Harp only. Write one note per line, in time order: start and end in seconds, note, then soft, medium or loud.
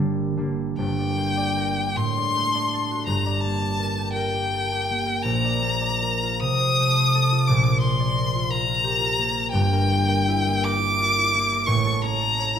0.00 0.77 G1 medium
0.00 0.78 G2 medium
0.00 0.36 D3 medium
0.00 0.37 G3 medium
0.00 0.37 A#3 medium
0.00 1.05 D4 medium
0.00 1.99 G4 medium
0.00 0.97 D5 medium
0.00 1.99 G5 loud
0.37 0.81 D3 medium
0.37 2.00 G3 medium
0.37 1.16 A#3 medium
0.78 2.00 G1 medium
0.78 2.01 G2 medium
0.98 1.36 D5 medium
1.17 2.00 A#3 soft
1.37 2.16 D5 medium
1.57 2.00 A#4 medium
1.77 5.67 D4 soft
1.96 3.09 A2 medium
2.17 2.53 D5 soft
2.36 3.11 A3 medium
2.54 3.25 D5 medium
2.74 3.11 A4 medium
2.91 3.11 F#4 medium
3.06 5.25 G1 medium
3.06 5.26 G2 medium
3.26 3.60 D5 medium
3.45 4.89 A#3 soft
3.61 5.43 D5 medium
3.80 4.15 A#4 medium
3.98 4.33 G4 soft
4.16 5.05 A#4 medium
4.34 4.71 G4 medium
4.53 4.82 A4 soft
4.72 5.27 G4 soft
4.90 5.61 A#3 medium
5.06 6.01 A#4 soft
5.25 6.43 A#1 medium
5.25 6.44 A#2 medium
5.44 5.80 D5 medium
5.62 6.43 A#3 medium
5.81 6.43 D5 medium
6.02 6.44 A#4 medium
6.23 7.31 F4 soft
6.41 7.50 C3 medium
6.60 6.96 C5 medium
6.80 7.51 A3 medium
6.97 7.51 C5 soft
7.15 7.51 A4 medium
7.32 8.34 F4 soft
7.49 9.56 A#1 medium
7.49 9.57 A#2 medium
7.67 7.98 D5 medium
7.83 9.17 A#3 medium
7.99 9.56 D5 medium
8.16 8.51 A#4 medium
8.35 8.68 F4 soft
8.52 9.34 A#4 medium
8.69 9.00 F4 medium
8.84 9.13 G4 medium
9.01 9.55 F4 medium
9.18 9.91 A#3 medium
9.35 9.72 A#4 medium
9.53 11.71 G1 medium
9.53 11.72 G2 medium
9.73 10.07 A#4 medium
9.92 10.46 A#3 medium
10.09 10.63 A#4 medium
10.28 10.81 E4 medium
10.47 11.33 A#3 medium
10.64 11.51 A#4 medium
10.82 11.17 E4 medium
11.00 11.29 F4 medium
11.18 12.55 E4 medium
11.35 11.71 A#3 medium
11.52 11.71 A#4 medium
11.67 12.59 A1 medium
11.67 12.59 A2 medium
11.85 12.20 A4 medium
12.03 12.59 C#4 medium
12.21 12.59 A4 medium
12.39 12.59 C#5 medium
12.56 12.59 E4 medium